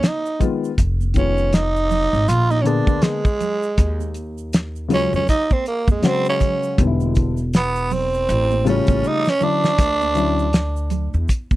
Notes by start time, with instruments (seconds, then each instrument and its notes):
0.03 snare, closed hi-hat, shaker
0.07 tenor saxophone D#4
0.26 shaker
0.39 upright piano D#3 G#3 B3 F4, kick, closed hi-hat, low conga, shaker
0.64 shaker
0.78 upright bass F1, kick, closed hi-hat, shaker
1.01 high conga, shaker
1.14 upright piano D#3 G#3 B3 F4, tenor saxophone C#4, kick, closed hi-hat, shaker
1.38 shaker
1.53 tenor saxophone D#4, snare, closed hi-hat, shaker
1.76 shaker
1.89 open hi-hat, low conga, shaker
2.13 upright bass G#1, shaker
2.28 upright bass A#1, tenor saxophone F4, closed hi-hat, shaker
2.51 tenor saxophone D#4, high conga, shaker
2.61 upright piano D3 A#3, tenor saxophone C#4
2.65 upright piano B3 G#4, tenor saxophone D4, closed hi-hat, shaker
2.87 upright bass D2, kick, high conga, shaker
3.02 tenor saxophone G#3, snare, closed hi-hat, shaker
3.25 kick, shaker
3.40 closed hi-hat, low conga, shaker
3.63 shaker
3.78 upright bass D#2, kick, closed hi-hat, shaker
4.00 high conga, shaker
4.14 closed hi-hat, shaker
4.38 shaker
4.53 snare, closed hi-hat, shaker
4.76 shaker
4.88 upright piano C#3 F#3 G#3 F4, closed hi-hat, low conga, shaker
4.93 tenor saxophone C#4
5.13 upright bass F2, tenor saxophone C#4, shaker
5.28 tenor saxophone D#4, kick, closed hi-hat, shaker
5.50 tenor saxophone C4, kick, high conga, shaker
5.66 tenor saxophone A#3, closed hi-hat, shaker
5.88 upright bass F2, tenor saxophone G#3, kick, high conga, shaker
6.02 upright piano C#3 F#3 G#3 F#4, tenor saxophone C#4, snare, closed hi-hat, shaker
6.06 tenor saxophone C4
6.25 tenor saxophone C#4, shaker
6.40 kick, closed hi-hat, low conga, shaker
6.63 shaker
6.78 upright bass E1, upright piano D3 G3 B3 D#4, kick, closed hi-hat, shaker
6.87 upright piano E4
7.00 high conga, shaker
7.15 kick, closed hi-hat, shaker
7.37 shaker
7.54 tenor saxophone B3, snare, closed hi-hat, shaker
7.76 shaker
7.90 tenor saxophone C4, open hi-hat, low conga, shaker
8.14 shaker
8.29 upright bass A1, closed hi-hat, shaker
8.51 high conga, shaker
8.64 upright piano C#3 G3 A3 F4, closed hi-hat, shaker
8.69 tenor saxophone C#4
8.87 upright bass A1, kick, closed hi-hat, high conga, shaker
9.04 tenor saxophone D#4, shaker
9.25 tenor saxophone C#4, snare, shaker
9.41 upright piano D3 F#3 C#4 E4, tenor saxophone D4, low conga, shaker
9.64 snare, shaker
9.78 upright bass D2, kick, closed hi-hat, shaker
10.01 high conga, shaker
10.15 upright piano D3 F#3 C#4 E4, closed hi-hat, shaker
10.39 shaker
10.53 snare, closed hi-hat, shaker
10.76 shaker
10.90 closed hi-hat, low conga, shaker
11.14 upright bass E2, shaker
11.28 kick, closed hi-hat, shaker
11.51 kick, high conga, shaker